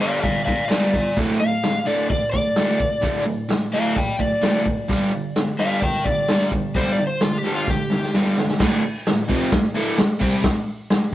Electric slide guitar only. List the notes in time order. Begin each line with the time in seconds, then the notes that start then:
0.01 D5 F5
0.22 D5 F5
0.45 D5 F5
0.68 F4 D5
0.94 F4 D5
1.40 F5
1.86 D5
2.11 D5
2.32 D5
3.74 A4 F5
3.98 D5 G5
4.20 D5
5.59 D5 F5
5.83 A#4 G5
6.04 D5
6.76 C5
6.92 D5
7.07 C5
7.22 F4
7.38 G4
7.55 F4
7.70 G4